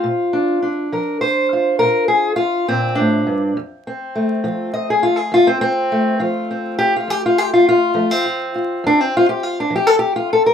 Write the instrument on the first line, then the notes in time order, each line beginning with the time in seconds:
steel-string acoustic guitar
Already playing: F4
0.04 A#2
0.33 D4
0.63 D4
0.92 F3 A#4
1.21 C5
1.53 F4
1.79 A#2 A#4
2.08 G#4
2.36 F4
2.68 A#2 C4
2.95 A2 D4
3.27 G2
3.57 F2
3.87 C4
4.16 A3
4.44 F3 F4
4.74 D#5
4.90 G#4
5.03 F4
5.16 G#4
5.32 F2 F4
5.47 C4
5.61 C4
5.92 A3
6.19 F3 F4
6.51 C4
6.78 G4
6.96 F4
7.08 F2 G4
7.26 F4
7.38 G4
7.54 F4
7.69 F4
7.95 F3 A3
8.11 C4
8.26 F4
8.55 F4
8.84 F2 D4
9.00 C4
9.17 F4
9.29 G4
9.43 F4
9.60 D4
9.70 F3
9.76 G4
9.87 A4
9.99 G4
10.16 F4
10.33 A4
10.46 A#4